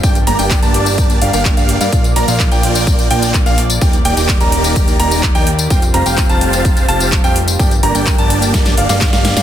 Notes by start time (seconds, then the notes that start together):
Already playing: G3
0.03 G1 A#3 D4 G4 D5 G5, kick, closed hi-hat, tambourine
0.15 closed hi-hat, tambourine
0.27 G1 A#3 D4 G4 D5 A#5, open hi-hat
0.39 G1 A#3 D4 G4 D5 G5, closed hi-hat, tambourine
0.51 kick, clap, closed hi-hat, tambourine
0.63 G1 A#3 D4 G4 D5 A5, closed hi-hat, tambourine
0.74 open hi-hat
0.86 closed hi-hat, tambourine
0.98 kick, closed hi-hat, tambourine
1.10 closed hi-hat, tambourine
1.22 G1 A#3 D4 G4 D5 F5, open hi-hat
1.33 G1 A#3 D4 G4 D5 F5, closed hi-hat, tambourine
1.45 kick, clap, closed hi-hat, tambourine
1.57 G1 A#3 D4 G4 D5 F5, closed hi-hat, tambourine
1.69 open hi-hat
1.81 G2 A#3 D4 G4 D5 F5, closed hi-hat, tambourine
1.92 A#1 F3 A#3 D4 F4 D5 F5, kick, closed hi-hat, tambourine
2.04 closed hi-hat, tambourine
2.16 A#1 A#3 D4 F4 D5 A#5, open hi-hat
2.28 A#1 A#3 D4 F4 D5 F5, closed hi-hat, tambourine
2.40 kick, clap, closed hi-hat
2.52 A#1 A#3 D4 F4 D5 G5, closed hi-hat, tambourine
2.63 open hi-hat
2.75 closed hi-hat, tambourine
2.87 kick, closed hi-hat, tambourine
2.99 closed hi-hat, tambourine
3.11 A#1 A#3 D4 F4 D5 G5, open hi-hat
3.22 closed hi-hat, tambourine
3.34 kick, clap, closed hi-hat, tambourine
3.46 A#1 A#3 D4 F4 D5 F5, closed hi-hat, tambourine
3.58 open hi-hat
3.70 closed hi-hat, tambourine
3.81 D#1 D#3 A#3 D#4 G4 D5 G5, kick, closed hi-hat, tambourine
3.93 closed hi-hat, tambourine
4.05 D#1 A#3 D#4 G4 D5 G5, open hi-hat
4.17 D#1 A#3 D#4 G4 D5 G5, closed hi-hat, tambourine
4.29 kick, clap, closed hi-hat, tambourine
4.40 D#1 A#3 D#4 G4 D5 A#5, closed hi-hat, tambourine
4.52 open hi-hat
4.64 closed hi-hat, tambourine
4.76 kick, closed hi-hat, tambourine
4.88 closed hi-hat, tambourine
5.00 D#1 A#3 D#4 G4 D5 A#5, open hi-hat
5.11 closed hi-hat, tambourine
5.23 kick, clap, closed hi-hat
5.35 D#2 A#3 D#4 G4 D5 G5, closed hi-hat, tambourine
5.47 open hi-hat
5.59 closed hi-hat, tambourine
5.70 F1 G3 C4 F4 G4 F5 G5, kick, closed hi-hat, tambourine
5.82 closed hi-hat, tambourine
5.94 F1 C4 F4 G4 F5 A#5, open hi-hat
6.06 F1 C4 F4 G4 F5 G5, closed hi-hat, tambourine
6.18 kick, clap, closed hi-hat, tambourine
6.29 F1 C4 F4 G4 F5 A5, closed hi-hat, tambourine
6.41 open hi-hat
6.53 closed hi-hat, tambourine
6.65 kick, closed hi-hat, tambourine
6.77 closed hi-hat, tambourine
6.89 F1 C4 F4 G4 F5 A5, open hi-hat
7.00 closed hi-hat, tambourine
7.12 kick, clap, closed hi-hat, tambourine
7.24 F1 C4 F4 G4 F5 G5, closed hi-hat, tambourine
7.36 open hi-hat
7.48 closed hi-hat, tambourine
7.59 G1 A#3 D4 G4 D5 G5, kick, closed hi-hat, tambourine
7.71 closed hi-hat, tambourine
7.83 G1 A#3 D4 G4 D5 A#5, open hi-hat
7.95 G1 A#3 D4 G4 D5 G5, closed hi-hat, tambourine
8.07 kick, clap, closed hi-hat, tambourine
8.18 G1 A#3 D4 G4 D5 A5, closed hi-hat, tambourine
8.30 open hi-hat
8.42 closed hi-hat, tambourine
8.54 kick, snare, closed hi-hat, tambourine
8.66 snare, closed hi-hat, tambourine
8.78 G1 A#3 D4 G4 D5 F5, open hi-hat
8.89 G1 A#3 D4 G4 D5 F5, snare, closed hi-hat, tambourine
9.01 kick, snare, clap, closed hi-hat, tambourine
9.13 G1 A#3 D4 G4 D5 F5, snare, closed hi-hat, tambourine
9.25 snare, open hi-hat
9.37 G2 A#3 D4 G4 D5 F5, snare, closed hi-hat, tambourine